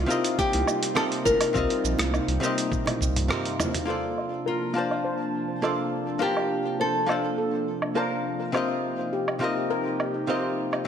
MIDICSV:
0, 0, Header, 1, 7, 480
1, 0, Start_track
1, 0, Key_signature, -2, "major"
1, 0, Tempo, 582524
1, 1280, Time_signature, 4, 2, 24, 8
1, 8961, End_track
2, 0, Start_track
2, 0, Title_t, "Steel pan"
2, 0, Program_c, 0, 114
2, 3196, Note_on_c, 0, 69, 64
2, 3426, Note_off_c, 0, 69, 0
2, 3677, Note_on_c, 0, 70, 83
2, 3894, Note_off_c, 0, 70, 0
2, 4157, Note_on_c, 0, 72, 65
2, 4374, Note_off_c, 0, 72, 0
2, 4637, Note_on_c, 0, 69, 62
2, 4866, Note_off_c, 0, 69, 0
2, 5119, Note_on_c, 0, 70, 86
2, 5336, Note_off_c, 0, 70, 0
2, 5601, Note_on_c, 0, 72, 66
2, 5817, Note_off_c, 0, 72, 0
2, 6082, Note_on_c, 0, 69, 64
2, 6309, Note_off_c, 0, 69, 0
2, 6559, Note_on_c, 0, 70, 90
2, 6776, Note_off_c, 0, 70, 0
2, 7041, Note_on_c, 0, 72, 69
2, 7257, Note_off_c, 0, 72, 0
2, 7522, Note_on_c, 0, 67, 66
2, 7749, Note_off_c, 0, 67, 0
2, 7997, Note_on_c, 0, 70, 84
2, 8215, Note_off_c, 0, 70, 0
2, 8481, Note_on_c, 0, 72, 71
2, 8697, Note_off_c, 0, 72, 0
2, 8961, End_track
3, 0, Start_track
3, 0, Title_t, "Hollow-body jazz guitar"
3, 0, Program_c, 1, 26
3, 52, Note_on_c, 1, 48, 80
3, 58, Note_on_c, 1, 60, 74
3, 68, Note_on_c, 1, 65, 76
3, 76, Note_on_c, 1, 67, 69
3, 82, Note_off_c, 1, 67, 0
3, 85, Note_on_c, 1, 70, 75
3, 90, Note_on_c, 1, 75, 85
3, 757, Note_off_c, 1, 48, 0
3, 761, Note_off_c, 1, 60, 0
3, 766, Note_off_c, 1, 65, 0
3, 774, Note_off_c, 1, 70, 0
3, 776, Note_off_c, 1, 75, 0
3, 783, Note_on_c, 1, 48, 71
3, 787, Note_on_c, 1, 60, 70
3, 792, Note_on_c, 1, 65, 69
3, 799, Note_on_c, 1, 70, 69
3, 800, Note_on_c, 1, 67, 54
3, 804, Note_on_c, 1, 75, 78
3, 1243, Note_off_c, 1, 48, 0
3, 1245, Note_off_c, 1, 60, 0
3, 1247, Note_off_c, 1, 65, 0
3, 1250, Note_off_c, 1, 67, 0
3, 1252, Note_off_c, 1, 70, 0
3, 1253, Note_off_c, 1, 75, 0
3, 1259, Note_on_c, 1, 48, 80
3, 1268, Note_on_c, 1, 60, 78
3, 1273, Note_on_c, 1, 65, 78
3, 1281, Note_on_c, 1, 67, 79
3, 1288, Note_off_c, 1, 67, 0
3, 1292, Note_on_c, 1, 70, 80
3, 1298, Note_on_c, 1, 75, 89
3, 1961, Note_off_c, 1, 48, 0
3, 1965, Note_off_c, 1, 60, 0
3, 1968, Note_off_c, 1, 65, 0
3, 1977, Note_off_c, 1, 70, 0
3, 1977, Note_on_c, 1, 48, 82
3, 1981, Note_off_c, 1, 75, 0
3, 1986, Note_on_c, 1, 60, 77
3, 1995, Note_on_c, 1, 65, 74
3, 2000, Note_off_c, 1, 65, 0
3, 2003, Note_on_c, 1, 67, 72
3, 2008, Note_on_c, 1, 70, 78
3, 2017, Note_on_c, 1, 75, 92
3, 2680, Note_off_c, 1, 48, 0
3, 2684, Note_off_c, 1, 60, 0
3, 2693, Note_off_c, 1, 67, 0
3, 2695, Note_off_c, 1, 70, 0
3, 2700, Note_off_c, 1, 75, 0
3, 2705, Note_on_c, 1, 48, 75
3, 2707, Note_on_c, 1, 60, 69
3, 2714, Note_on_c, 1, 65, 62
3, 2719, Note_on_c, 1, 67, 59
3, 2720, Note_on_c, 1, 70, 71
3, 2724, Note_on_c, 1, 75, 75
3, 3164, Note_off_c, 1, 48, 0
3, 3166, Note_off_c, 1, 60, 0
3, 3167, Note_off_c, 1, 65, 0
3, 3168, Note_off_c, 1, 67, 0
3, 3172, Note_off_c, 1, 70, 0
3, 3172, Note_off_c, 1, 75, 0
3, 3176, Note_on_c, 1, 58, 72
3, 3186, Note_on_c, 1, 65, 65
3, 3197, Note_on_c, 1, 69, 65
3, 3205, Note_on_c, 1, 72, 66
3, 3214, Note_on_c, 1, 74, 83
3, 3879, Note_off_c, 1, 58, 0
3, 3884, Note_off_c, 1, 65, 0
3, 3890, Note_off_c, 1, 69, 0
3, 3894, Note_off_c, 1, 72, 0
3, 3898, Note_off_c, 1, 74, 0
3, 3903, Note_on_c, 1, 58, 69
3, 3914, Note_on_c, 1, 65, 66
3, 3924, Note_on_c, 1, 81, 60
3, 3934, Note_on_c, 1, 72, 64
3, 3941, Note_on_c, 1, 74, 80
3, 4603, Note_off_c, 1, 58, 0
3, 4608, Note_off_c, 1, 65, 0
3, 4613, Note_off_c, 1, 81, 0
3, 4619, Note_off_c, 1, 72, 0
3, 4622, Note_off_c, 1, 74, 0
3, 4632, Note_on_c, 1, 58, 68
3, 4639, Note_on_c, 1, 65, 62
3, 4643, Note_on_c, 1, 69, 61
3, 4648, Note_on_c, 1, 72, 59
3, 4654, Note_on_c, 1, 74, 71
3, 5087, Note_off_c, 1, 58, 0
3, 5091, Note_off_c, 1, 65, 0
3, 5093, Note_off_c, 1, 69, 0
3, 5096, Note_off_c, 1, 72, 0
3, 5098, Note_off_c, 1, 74, 0
3, 5101, Note_on_c, 1, 58, 77
3, 5110, Note_on_c, 1, 65, 68
3, 5121, Note_on_c, 1, 81, 65
3, 5129, Note_on_c, 1, 72, 62
3, 5138, Note_on_c, 1, 74, 82
3, 5802, Note_off_c, 1, 58, 0
3, 5807, Note_off_c, 1, 65, 0
3, 5812, Note_off_c, 1, 81, 0
3, 5816, Note_off_c, 1, 72, 0
3, 5820, Note_off_c, 1, 74, 0
3, 5821, Note_on_c, 1, 58, 71
3, 5830, Note_on_c, 1, 65, 70
3, 5839, Note_on_c, 1, 69, 62
3, 5849, Note_on_c, 1, 72, 66
3, 5862, Note_on_c, 1, 74, 78
3, 6522, Note_off_c, 1, 58, 0
3, 6527, Note_off_c, 1, 65, 0
3, 6531, Note_off_c, 1, 69, 0
3, 6536, Note_off_c, 1, 72, 0
3, 6542, Note_off_c, 1, 74, 0
3, 6553, Note_on_c, 1, 58, 67
3, 6556, Note_on_c, 1, 65, 60
3, 6563, Note_on_c, 1, 81, 58
3, 6567, Note_on_c, 1, 72, 56
3, 6572, Note_on_c, 1, 74, 73
3, 7008, Note_off_c, 1, 58, 0
3, 7009, Note_off_c, 1, 65, 0
3, 7013, Note_off_c, 1, 81, 0
3, 7015, Note_off_c, 1, 72, 0
3, 7017, Note_off_c, 1, 74, 0
3, 7023, Note_on_c, 1, 48, 74
3, 7029, Note_on_c, 1, 60, 70
3, 7039, Note_on_c, 1, 65, 70
3, 7047, Note_on_c, 1, 67, 69
3, 7050, Note_off_c, 1, 67, 0
3, 7053, Note_on_c, 1, 70, 68
3, 7062, Note_on_c, 1, 75, 85
3, 7723, Note_off_c, 1, 48, 0
3, 7726, Note_off_c, 1, 60, 0
3, 7731, Note_off_c, 1, 65, 0
3, 7738, Note_off_c, 1, 70, 0
3, 7738, Note_on_c, 1, 48, 74
3, 7742, Note_off_c, 1, 75, 0
3, 7746, Note_on_c, 1, 60, 68
3, 7753, Note_on_c, 1, 65, 71
3, 7761, Note_on_c, 1, 67, 68
3, 7766, Note_off_c, 1, 67, 0
3, 7769, Note_on_c, 1, 70, 67
3, 7777, Note_on_c, 1, 75, 87
3, 8440, Note_off_c, 1, 48, 0
3, 8444, Note_off_c, 1, 60, 0
3, 8448, Note_off_c, 1, 65, 0
3, 8456, Note_off_c, 1, 70, 0
3, 8460, Note_off_c, 1, 75, 0
3, 8465, Note_on_c, 1, 48, 68
3, 8468, Note_on_c, 1, 60, 60
3, 8473, Note_on_c, 1, 65, 56
3, 8482, Note_on_c, 1, 67, 52
3, 8483, Note_on_c, 1, 70, 61
3, 8487, Note_on_c, 1, 75, 74
3, 8924, Note_off_c, 1, 48, 0
3, 8926, Note_off_c, 1, 60, 0
3, 8929, Note_off_c, 1, 65, 0
3, 8930, Note_off_c, 1, 67, 0
3, 8933, Note_off_c, 1, 70, 0
3, 8935, Note_off_c, 1, 75, 0
3, 8961, End_track
4, 0, Start_track
4, 0, Title_t, "Nylon-string guitar"
4, 0, Program_c, 2, 24
4, 0, Note_on_c, 2, 65, 84
4, 318, Note_on_c, 2, 67, 97
4, 345, Note_off_c, 2, 65, 0
4, 792, Note_off_c, 2, 67, 0
4, 795, Note_on_c, 2, 69, 109
4, 860, Note_off_c, 2, 69, 0
4, 1033, Note_on_c, 2, 70, 94
4, 2683, Note_off_c, 2, 70, 0
4, 3688, Note_on_c, 2, 65, 64
4, 5124, Note_on_c, 2, 67, 87
4, 5167, Note_off_c, 2, 65, 0
4, 5606, Note_off_c, 2, 67, 0
4, 5609, Note_on_c, 2, 69, 83
4, 6771, Note_off_c, 2, 69, 0
4, 8961, End_track
5, 0, Start_track
5, 0, Title_t, "Analog synth pad"
5, 0, Program_c, 3, 89
5, 0, Note_on_c, 3, 48, 86
5, 0, Note_on_c, 3, 55, 74
5, 0, Note_on_c, 3, 58, 75
5, 0, Note_on_c, 3, 63, 73
5, 0, Note_on_c, 3, 65, 86
5, 3161, Note_off_c, 3, 58, 0
5, 3162, Note_off_c, 3, 48, 0
5, 3163, Note_off_c, 3, 55, 0
5, 3163, Note_off_c, 3, 63, 0
5, 3163, Note_off_c, 3, 65, 0
5, 3194, Note_on_c, 3, 58, 67
5, 3194, Note_on_c, 3, 62, 67
5, 3195, Note_on_c, 3, 53, 71
5, 3196, Note_on_c, 3, 81, 84
5, 3199, Note_on_c, 3, 48, 75
5, 7004, Note_off_c, 3, 62, 0
5, 7005, Note_off_c, 3, 81, 0
5, 7039, Note_on_c, 3, 67, 87
5, 7041, Note_on_c, 3, 63, 67
5, 8961, Note_off_c, 3, 48, 0
5, 8961, Note_off_c, 3, 53, 0
5, 8961, Note_off_c, 3, 58, 0
5, 8961, Note_off_c, 3, 63, 0
5, 8961, Note_off_c, 3, 67, 0
5, 8961, End_track
6, 0, Start_track
6, 0, Title_t, "Sub bass"
6, 0, Program_c, 4, 38
6, 444, Note_on_c, 4, 36, 82
6, 526, Note_off_c, 4, 36, 0
6, 1037, Note_on_c, 4, 31, 88
6, 1124, Note_off_c, 4, 31, 0
6, 1280, Note_on_c, 4, 36, 98
6, 1366, Note_off_c, 4, 36, 0
6, 1518, Note_on_c, 4, 34, 93
6, 1605, Note_off_c, 4, 34, 0
6, 1641, Note_on_c, 4, 36, 72
6, 1809, Note_off_c, 4, 36, 0
6, 1877, Note_on_c, 4, 36, 81
6, 1963, Note_off_c, 4, 36, 0
6, 2479, Note_on_c, 4, 36, 90
6, 2719, Note_off_c, 4, 36, 0
6, 8961, End_track
7, 0, Start_track
7, 0, Title_t, "Drums"
7, 85, Note_on_c, 9, 69, 73
7, 167, Note_off_c, 9, 69, 0
7, 202, Note_on_c, 9, 42, 57
7, 206, Note_on_c, 9, 69, 43
7, 284, Note_off_c, 9, 42, 0
7, 289, Note_off_c, 9, 69, 0
7, 318, Note_on_c, 9, 36, 114
7, 323, Note_on_c, 9, 69, 30
7, 401, Note_off_c, 9, 36, 0
7, 406, Note_off_c, 9, 69, 0
7, 439, Note_on_c, 9, 42, 44
7, 447, Note_on_c, 9, 60, 58
7, 522, Note_off_c, 9, 42, 0
7, 529, Note_off_c, 9, 60, 0
7, 556, Note_on_c, 9, 77, 69
7, 561, Note_on_c, 9, 69, 69
7, 639, Note_off_c, 9, 77, 0
7, 643, Note_off_c, 9, 69, 0
7, 681, Note_on_c, 9, 42, 55
7, 685, Note_on_c, 9, 69, 38
7, 763, Note_off_c, 9, 42, 0
7, 768, Note_off_c, 9, 69, 0
7, 795, Note_on_c, 9, 37, 71
7, 800, Note_on_c, 9, 69, 31
7, 878, Note_off_c, 9, 37, 0
7, 882, Note_off_c, 9, 69, 0
7, 921, Note_on_c, 9, 42, 43
7, 1003, Note_off_c, 9, 42, 0
7, 1038, Note_on_c, 9, 36, 97
7, 1040, Note_on_c, 9, 60, 75
7, 1040, Note_on_c, 9, 69, 69
7, 1120, Note_off_c, 9, 36, 0
7, 1122, Note_off_c, 9, 60, 0
7, 1123, Note_off_c, 9, 69, 0
7, 1159, Note_on_c, 9, 42, 55
7, 1159, Note_on_c, 9, 77, 81
7, 1164, Note_on_c, 9, 69, 41
7, 1241, Note_off_c, 9, 42, 0
7, 1241, Note_off_c, 9, 77, 0
7, 1246, Note_off_c, 9, 69, 0
7, 1279, Note_on_c, 9, 36, 115
7, 1281, Note_on_c, 9, 69, 32
7, 1361, Note_off_c, 9, 36, 0
7, 1364, Note_off_c, 9, 69, 0
7, 1404, Note_on_c, 9, 42, 31
7, 1486, Note_off_c, 9, 42, 0
7, 1523, Note_on_c, 9, 69, 72
7, 1606, Note_off_c, 9, 69, 0
7, 1637, Note_on_c, 9, 60, 81
7, 1643, Note_on_c, 9, 37, 75
7, 1643, Note_on_c, 9, 42, 59
7, 1648, Note_on_c, 9, 69, 40
7, 1719, Note_off_c, 9, 60, 0
7, 1726, Note_off_c, 9, 37, 0
7, 1726, Note_off_c, 9, 42, 0
7, 1730, Note_off_c, 9, 69, 0
7, 1761, Note_on_c, 9, 77, 77
7, 1766, Note_on_c, 9, 69, 31
7, 1843, Note_off_c, 9, 77, 0
7, 1848, Note_off_c, 9, 69, 0
7, 1882, Note_on_c, 9, 42, 31
7, 1965, Note_off_c, 9, 42, 0
7, 2004, Note_on_c, 9, 69, 76
7, 2086, Note_off_c, 9, 69, 0
7, 2125, Note_on_c, 9, 42, 55
7, 2130, Note_on_c, 9, 69, 42
7, 2208, Note_off_c, 9, 42, 0
7, 2213, Note_off_c, 9, 69, 0
7, 2239, Note_on_c, 9, 36, 110
7, 2242, Note_on_c, 9, 48, 57
7, 2247, Note_on_c, 9, 69, 30
7, 2321, Note_off_c, 9, 36, 0
7, 2325, Note_off_c, 9, 48, 0
7, 2329, Note_off_c, 9, 69, 0
7, 2355, Note_on_c, 9, 60, 50
7, 2367, Note_on_c, 9, 42, 44
7, 2367, Note_on_c, 9, 48, 57
7, 2367, Note_on_c, 9, 77, 76
7, 2438, Note_off_c, 9, 60, 0
7, 2450, Note_off_c, 9, 42, 0
7, 2450, Note_off_c, 9, 48, 0
7, 2450, Note_off_c, 9, 77, 0
7, 2479, Note_on_c, 9, 36, 58
7, 2490, Note_on_c, 9, 69, 64
7, 2561, Note_off_c, 9, 36, 0
7, 2573, Note_off_c, 9, 69, 0
7, 2607, Note_on_c, 9, 42, 52
7, 2607, Note_on_c, 9, 47, 60
7, 2612, Note_on_c, 9, 69, 37
7, 2690, Note_off_c, 9, 42, 0
7, 2690, Note_off_c, 9, 47, 0
7, 2694, Note_off_c, 9, 69, 0
7, 2724, Note_on_c, 9, 37, 73
7, 2724, Note_on_c, 9, 47, 85
7, 2728, Note_on_c, 9, 69, 29
7, 2806, Note_off_c, 9, 37, 0
7, 2806, Note_off_c, 9, 47, 0
7, 2811, Note_off_c, 9, 69, 0
7, 2846, Note_on_c, 9, 42, 49
7, 2929, Note_off_c, 9, 42, 0
7, 2963, Note_on_c, 9, 45, 94
7, 2963, Note_on_c, 9, 77, 81
7, 2966, Note_on_c, 9, 60, 86
7, 2968, Note_on_c, 9, 69, 73
7, 3046, Note_off_c, 9, 45, 0
7, 3046, Note_off_c, 9, 77, 0
7, 3049, Note_off_c, 9, 60, 0
7, 3050, Note_off_c, 9, 69, 0
7, 3086, Note_on_c, 9, 42, 55
7, 3086, Note_on_c, 9, 45, 85
7, 3091, Note_on_c, 9, 69, 39
7, 3168, Note_off_c, 9, 42, 0
7, 3168, Note_off_c, 9, 45, 0
7, 3173, Note_off_c, 9, 69, 0
7, 3444, Note_on_c, 9, 77, 67
7, 3526, Note_off_c, 9, 77, 0
7, 4047, Note_on_c, 9, 77, 62
7, 4129, Note_off_c, 9, 77, 0
7, 4644, Note_on_c, 9, 77, 67
7, 4726, Note_off_c, 9, 77, 0
7, 5246, Note_on_c, 9, 77, 68
7, 5329, Note_off_c, 9, 77, 0
7, 5844, Note_on_c, 9, 77, 68
7, 5926, Note_off_c, 9, 77, 0
7, 6445, Note_on_c, 9, 77, 65
7, 6527, Note_off_c, 9, 77, 0
7, 7042, Note_on_c, 9, 77, 66
7, 7124, Note_off_c, 9, 77, 0
7, 7646, Note_on_c, 9, 77, 69
7, 7729, Note_off_c, 9, 77, 0
7, 8239, Note_on_c, 9, 77, 62
7, 8321, Note_off_c, 9, 77, 0
7, 8841, Note_on_c, 9, 77, 64
7, 8923, Note_off_c, 9, 77, 0
7, 8961, End_track
0, 0, End_of_file